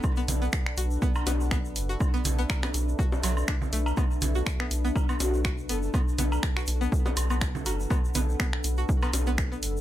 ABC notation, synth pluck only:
X:1
M:4/4
L:1/16
Q:"Swing 16ths" 1/4=122
K:Bm
V:1 name="Synth pluck"
z B, z B, z2 F z B, z B, z B, z2 F | z B, z B, z B, z2 F z F, z D z A, z | B, z2 F z B, z B, z B, z2 F z B, z | B, z B, z2 F z B, z B, z B, z2 F z |
B, z B, z B, z2 F z B, z B, z B, z2 |]